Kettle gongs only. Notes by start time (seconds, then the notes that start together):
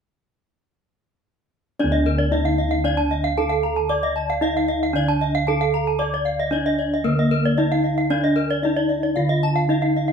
1.79 D4
1.84 D2
2.33 D#4
3.38 D#4
3.90 D5
4.42 D#4
4.94 D3
5.48 D#4
6.02 D5
6.54 D#4
7.06 D3
7.59 D#4
8.10 D4
8.63 D#4
9.16 D3
9.68 D#4